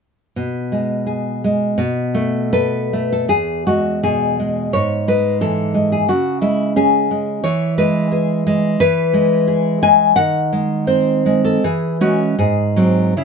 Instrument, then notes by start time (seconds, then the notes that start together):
nylon-string guitar
0.36 B2
0.72 G#3
1.06 G#4
1.44 G#3
1.78 B2
2.14 A3
2.53 A4 B4
2.93 A3
3.12 A4
3.29 E2 G#4
3.67 G#3 F#4
4.03 B2 G#4
4.40 G#3
4.73 G#2 C#5
5.08 G#3 B4
5.41 E3 A4
5.74 G#3
5.92 G#4
6.08 C#3 F#4
6.41 G#3 E4
6.76 C#4 G#4
7.11 G#3
7.44 E3 C#5
7.78 G#3 B4
8.12 G#4
8.47 G#3
8.80 E3 B4
9.13 G#3
9.47 G#4
9.82 G#3 G#5
10.16 D#3 F#5
10.53 G#3
10.87 C4 C5
11.26 G#3
11.45 A4
11.64 E3 G#4
12.01 G#3 C#4 F#4
12.38 G#2 G#4
12.76 F#3 C4
13.17 C#3 E4